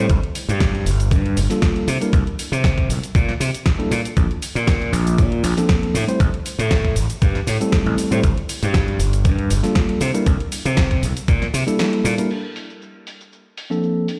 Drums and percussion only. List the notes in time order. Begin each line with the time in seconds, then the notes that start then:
0.10 kick, closed hi-hat, shaker
0.23 closed hi-hat
0.35 open hi-hat, shaker
0.49 closed hi-hat, shaker
0.60 kick, snare, closed hi-hat, shaker
0.75 closed hi-hat
0.86 open hi-hat, shaker
1.00 closed hi-hat, shaker
1.11 kick, closed hi-hat, shaker
1.26 closed hi-hat
1.37 open hi-hat, shaker
1.50 snare, closed hi-hat, shaker
1.62 kick, snare, closed hi-hat, shaker
1.76 closed hi-hat
1.88 open hi-hat, shaker
2.02 closed hi-hat, shaker
2.13 kick, closed hi-hat, shaker
2.27 closed hi-hat
2.39 open hi-hat, shaker
2.53 closed hi-hat, shaker
2.64 kick, snare, closed hi-hat, shaker
2.78 kick, closed hi-hat
2.90 open hi-hat, shaker
3.03 closed hi-hat, shaker
3.15 kick, closed hi-hat, shaker
3.29 snare, closed hi-hat
3.41 open hi-hat, shaker
3.54 closed hi-hat, shaker
3.66 kick, snare, closed hi-hat, shaker
3.80 closed hi-hat
3.92 open hi-hat, shaker
4.05 closed hi-hat, shaker
4.17 kick, closed hi-hat, shaker
4.31 closed hi-hat
4.42 open hi-hat, shaker
4.56 closed hi-hat, shaker
4.67 kick, snare, closed hi-hat, shaker
4.82 closed hi-hat
4.93 open hi-hat, shaker
5.07 closed hi-hat, shaker
5.18 kick, closed hi-hat, shaker
5.32 closed hi-hat
5.44 open hi-hat, shaker
5.57 snare, closed hi-hat, shaker
5.69 kick, snare, closed hi-hat, shaker
5.83 closed hi-hat
5.95 open hi-hat, shaker
6.08 closed hi-hat, shaker
6.20 kick, closed hi-hat, shaker
6.34 closed hi-hat
6.46 open hi-hat, shaker
6.59 closed hi-hat, shaker
6.71 kick, snare, closed hi-hat, shaker
6.85 kick, closed hi-hat
6.96 open hi-hat, shaker
7.10 closed hi-hat, shaker
7.22 kick, closed hi-hat, shaker
7.35 snare, closed hi-hat
7.47 open hi-hat, shaker
7.61 closed hi-hat, shaker
7.72 kick, snare, closed hi-hat, shaker
7.86 closed hi-hat
7.98 open hi-hat, shaker
8.12 closed hi-hat, shaker
8.24 kick, closed hi-hat, shaker
8.37 closed hi-hat
8.49 open hi-hat, shaker
8.63 closed hi-hat, shaker
8.74 kick, snare, closed hi-hat, shaker
8.88 closed hi-hat
9.00 open hi-hat, shaker
9.13 closed hi-hat, shaker
9.25 kick, closed hi-hat, shaker
9.39 closed hi-hat
9.50 open hi-hat, shaker
9.63 snare, closed hi-hat, shaker
9.75 kick, snare, closed hi-hat, shaker
9.89 closed hi-hat
10.01 open hi-hat, shaker
10.15 closed hi-hat, shaker
10.26 kick, closed hi-hat, shaker
10.40 closed hi-hat
10.52 open hi-hat, shaker
10.66 closed hi-hat, shaker
10.77 kick, snare, closed hi-hat, shaker
10.91 kick, closed hi-hat
11.03 open hi-hat, shaker
11.17 closed hi-hat, shaker
11.28 kick, closed hi-hat, shaker
11.42 snare, closed hi-hat
11.54 open hi-hat, shaker
11.68 closed hi-hat, shaker
11.79 snare, closed hi-hat, shaker
11.93 closed hi-hat
12.05 open hi-hat, shaker
12.18 closed hi-hat, shaker
12.31 crash, shaker
12.56 open hi-hat, shaker
12.70 shaker
12.82 shaker
13.07 open hi-hat, shaker
13.21 shaker
13.33 shaker
13.57 open hi-hat, shaker
13.72 shaker
13.83 shaker
14.08 open hi-hat, shaker